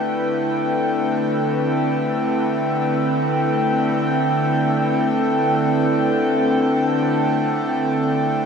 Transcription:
Already playing: D3 A3 C4 E4 B4 G5

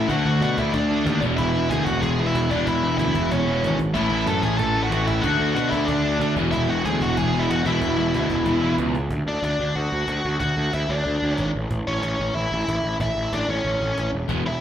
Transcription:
0.09 D2 D3 A3 D4 F#4 F#5, cajon bass
0.25 D2 F#4 F#5
0.41 B2 F#4 F#5, cajon slap
0.57 D2 D3 A3 D4 E4 E5, cajon bass
0.73 D2 D4 D5, cajon bass
0.89 D3 A3 D4
1.05 D#2 D3 A3 D4, cajon slap
1.21 E1 E2 B2 E3, cajon bass
1.37 E1 E4 E5, cajon bass
1.54 E1
1.70 D2 E2 B2 E3 G#4 G#5, cajon slap
1.84 E1 F#4 F#5, cajon bass
2.01 E1 E2 B2 E3 G#4 G#5, cajon bass
2.18 E2 B2 E3
2.26 E4 E5
2.35 E1, cajon slap
2.50 E2 B2 E3 D4 D5, cajon bass
2.66 E1 E4 E5, cajon bass
2.84 E1
2.98 D2 E2 B2 E3 E4 E5, cajon slap
3.15 E1, cajon bass
3.31 E1 E2 B2 E3 C#4 C#5, cajon bass
3.47 E2 B2 E3
3.63 G#1, cajon slap
3.79 cajon bass
3.94 A1 A2 E3 A3 E4 E5, cajon bass
4.11 A1
4.26 F#2 A4 A5, cajon slap
4.42 A1 A2 E3 A3 G#4 G#5, cajon bass
4.57 A1 A4 A5, cajon bass
4.75 A2 E3 A3
4.83 F#4 F#5
4.90 A1 A2 E3 A3, cajon slap
5.07 E4 E5, cajon bass
5.22 D2 D3 A3 D4 F#4 F#5, cajon bass
5.39 D2
5.55 B2 F#4 F#5, cajon slap
5.69 D2 D4 E4 E5, cajon bass
5.73 D3 A3
5.85 D2 D4 D5, cajon bass
6.03 D3 A3 D4
6.20 D2 D3 A3 D4, cajon slap
6.35 E1 E2 B2 E3, cajon bass
6.51 E1 E4 E5, cajon bass
6.69 E1 F#4 F#5
6.85 D2 E2 B2 E3 G#4 G#5, cajon slap
7.01 E1 F#4 F#5, cajon bass
7.17 E1 E2 B2 E3 G#4 G#5, cajon bass
7.32 E2 B2 E3
7.39 E4 E5
7.50 E1 F#4 F#5, cajon slap
7.64 E2 B2 E3 E4 E5, cajon bass
7.81 E1, cajon bass
7.98 E1
8.13 D2 E2 B2 E3, cajon slap
8.29 E1, cajon bass
8.45 E1 E2 B2 E3, cajon bass
8.61 E2 B2 E3
8.78 C#2, cajon slap
8.95 cajon slap
9.10 D2, cajon bass
9.26 D2 D4 D5
9.43 D2 D4 D5, cajon slap
9.60 D2
9.76 D2 F#4 F#5
9.92 D2
10.08 D2, cajon slap
10.25 D2
10.40 D2 F#4 F#5, cajon bass
10.57 D2
10.73 D2 E4 E5, cajon slap
10.89 D2 D4 D5
11.06 D2
11.22 D2
11.33 C#5
11.38 G#1, cajon slap
11.56 A1
11.71 A1, cajon bass
11.87 A1 C#4 C#5
12.02 A1 C#4 C#5, cajon slap
12.20 A1
12.35 A1 E4 E5
12.52 A1
12.68 A1, cajon slap
12.84 A1
13.00 A1 E4 E5, cajon bass
13.16 A1
13.33 A1 D4 D5, cajon slap
13.49 A1 C#4 C#5
13.65 A1
13.81 A1
13.98 A1, cajon slap
14.13 E1
14.29 E1 E2 B2 E3, cajon bass
14.44 E1 E4 E5

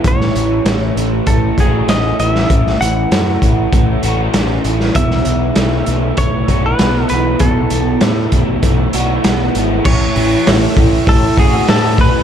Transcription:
Already playing: E3 A3 F#4
0.04 A1 A2 C#5, kick, closed hi-hat
0.21 snare
0.35 A1 E3, closed hi-hat
0.65 A1 A3, snare, closed hi-hat
0.96 A1 E3, closed hi-hat
1.27 A1 A3 A4, kick, closed hi-hat
1.58 A1 F#4 G#4, kick, closed hi-hat
1.88 A1 C#4 D#5, snare, closed hi-hat
2.19 A1 E3 D#5, closed hi-hat
2.31 E5
2.35 snare
2.50 A1 A2, kick, closed hi-hat
2.67 snare
2.81 A1 E3 F#5, closed hi-hat
3.12 F#2 A3, snare, closed hi-hat
3.42 A1 E3, kick, closed hi-hat
3.72 A1 A3, kick, closed hi-hat
4.03 A1 F#4, closed hi-hat
4.34 A1 C#4, snare, closed hi-hat
4.64 A1 E3, closed hi-hat
4.80 snare
4.95 B1 B2 E5, kick, closed hi-hat
5.11 snare
5.25 B1 E3, closed hi-hat
5.56 B1 A3, snare, closed hi-hat
5.86 B1 E3, closed hi-hat
6.17 B1 A3 C#5, kick, closed hi-hat
6.48 B1 F#4, kick, closed hi-hat
6.66 B4
6.79 B1 B3, snare, closed hi-hat
7.09 B1 E3 B4, closed hi-hat
7.39 B1 B2 A4, kick, closed hi-hat
7.70 B1 E3, closed hi-hat
8.01 A2 A3, snare, closed hi-hat
8.32 B1 E3, kick, closed hi-hat
8.55 G#4
8.63 B1 A3, kick, closed hi-hat
8.93 B1 F#4, closed hi-hat
9.24 B1 B3, snare, closed hi-hat
9.55 G#1 E3, closed hi-hat
9.85 A1 A2 C#5, kick, crash
10.15 A1 E3, open hi-hat
10.45 A1 A3, snare, open hi-hat
10.77 A1 E3, kick, open hi-hat
11.07 A1 A3 A4, kick, open hi-hat
11.37 A1 F#4 G#4, kick, open hi-hat
11.68 A2 C#4 A4, snare, open hi-hat
11.98 A3 B4, kick, open hi-hat

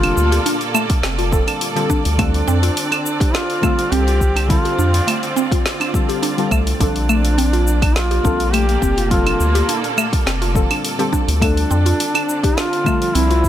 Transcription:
Already playing: F1 A#2 D3 G3 A#3 C4 F4 A4 D5
0.03 D4, open hi-hat, claves
0.17 D2, shaker
0.32 G4, open hi-hat, shaker
0.46 D4, open hi-hat, shaker
0.61 open hi-hat, shaker
0.74 A3, claves, shaker
0.90 kick, open hi-hat, shaker
1.03 F1 C4, snare, open hi-hat, shaker
1.18 F4, open hi-hat, shaker
1.31 D3 G3 C4 F4 A4, kick, shaker
1.47 D4, open hi-hat, claves, shaker
1.61 open hi-hat, shaker
1.75 D3 G3 C4 F4 G4 A4, open hi-hat, shaker
1.90 D4, kick, shaker
2.05 D2, open hi-hat, shaker
2.17 D3 G3 A3 C4 D4 F4, kick, open hi-hat, claves, shaker
2.21 A4
2.29 C4
2.34 open hi-hat
2.48 F2 C4, shaker
2.63 F4, open hi-hat, shaker
2.77 open hi-hat, shaker
2.92 D4, open hi-hat, claves, shaker
3.06 shaker
3.20 F4 G4, kick, open hi-hat, shaker
3.34 D4 F4, snare, open hi-hat, shaker
3.50 open hi-hat
3.61 D3 G3 A3 C4 F4, kick, claves, shaker
3.65 A4
3.79 open hi-hat, shaker
3.92 C2 C4 G4, open hi-hat, shaker
4.07 F4, open hi-hat, shaker
4.21 kick, shaker
4.36 D4, open hi-hat, claves, shaker
4.48 D3 G3 C4 F4 A4, kick, open hi-hat, shaker
4.65 G4, open hi-hat
4.78 F2 D4, shaker
4.94 open hi-hat, shaker
5.07 A3, open hi-hat, claves, shaker
5.23 open hi-hat, shaker
5.36 C4, shaker
5.52 F4, kick, open hi-hat, shaker
5.66 snare, open hi-hat, shaker
5.80 D4, open hi-hat, claves, shaker
5.93 D3 G3 C4 F4 A4, kick, shaker
6.09 G4, open hi-hat, shaker
6.23 D4, open hi-hat, shaker
6.37 D3 G3 C4 F4 A4, open hi-hat, shaker
6.51 C2 A3, kick, claves, shaker
6.67 open hi-hat, shaker
6.79 A#1 A#2 D3 G3 C4 D4 F4 A4, kick, open hi-hat, shaker
6.96 A#3, open hi-hat
7.09 A3, claves, shaker
7.25 open hi-hat, shaker
7.38 C4, open hi-hat, shaker
7.53 F4, open hi-hat, shaker
7.67 shaker
7.82 D4, kick, open hi-hat, claves, shaker
7.95 F4, snare, open hi-hat, shaker
8.11 G4, open hi-hat
8.23 A#1 D3 G3 C4 D4 F4 A4, kick, shaker
8.40 open hi-hat, shaker
8.50 A3 G4 A4, open hi-hat, claves
8.54 shaker
8.69 open hi-hat, shaker
8.82 F1 C4, kick, shaker
8.97 F4, open hi-hat, shaker
9.09 D3 G3 C4 F4 A4, kick, open hi-hat, shaker
9.26 D4, open hi-hat, claves
9.40 D2, shaker
9.55 G4, open hi-hat, shaker
9.69 D4, open hi-hat, shaker
9.84 open hi-hat, shaker
9.98 A3, claves, shaker
10.13 kick, open hi-hat, shaker
10.26 F1 C4, snare, open hi-hat, shaker
10.42 F4, open hi-hat, shaker
10.54 D3 G3 C4 F4 A4, kick, shaker
10.70 D4, open hi-hat, claves, shaker
10.85 open hi-hat, shaker
10.98 D3 G3 C4 F4 G4 A4, open hi-hat, shaker
11.13 D4, kick, shaker
11.28 D2, open hi-hat, shaker
11.39 D3 G3 A3 C4 D4 F4, kick, open hi-hat, claves, shaker
11.44 A4
11.57 open hi-hat
11.71 F2 C4, shaker
11.86 F4, open hi-hat, shaker
12.00 open hi-hat, shaker
12.15 C4 D4, open hi-hat, claves, shaker
12.29 shaker
12.43 G4, kick, open hi-hat, shaker
12.57 D4 F4, snare, open hi-hat, shaker
12.73 open hi-hat
12.84 D3 F3 G3 A3 C4 A4, kick, claves, shaker
13.02 open hi-hat, shaker
13.08 D4
13.15 C2 C4 E4, open hi-hat, shaker
13.30 F4, open hi-hat, shaker
13.44 kick, shaker

